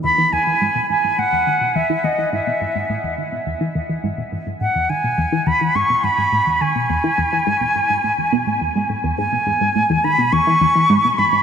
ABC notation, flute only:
X:1
M:4/4
L:1/8
Q:1/4=105
K:E
V:1 name="Flute"
b g2 g f2 e d | e3 z4 z | f g2 b c' b2 g- | g6- g z |
g3 b c'3 b |]